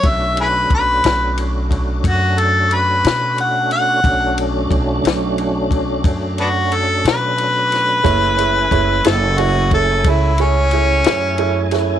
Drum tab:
RD |xxxxxxxxxxxx|xxxxxxxxxxxx|xxxxxxxxxxxx|
SD |---o-----o--|---o-----o-o|---o-----o-o|
BD |o-o--oo-----|o-o--oo-----|o-o--oo-----|